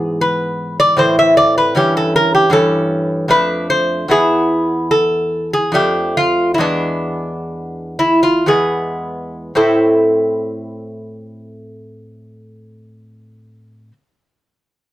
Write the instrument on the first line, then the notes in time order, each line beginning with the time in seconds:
lute
Already playing: G#2 E3 B3 G#4
0.21 B4
0.80 D5
0.97 A2 E3 C4 C5
1.19 E5
1.37 D5
1.58 B4
1.75 G2 E3 C#4 G4
1.97 A4
2.16 A#4
2.35 G4
2.50 G2 E3 C#4 A4
3.28 F2 A3 D4 B4
3.70 C5
4.08 E2 B3 E4 G#4
4.91 A4
5.53 G#4
5.72 F2 A3 D4 G4
6.17 F4
6.54 E2 E4
6.59 G#3 B3 D4
7.99 E4
8.23 F4
8.46 E2 G#3 B3 G#4
9.55 A2 C4 E4 A4 C5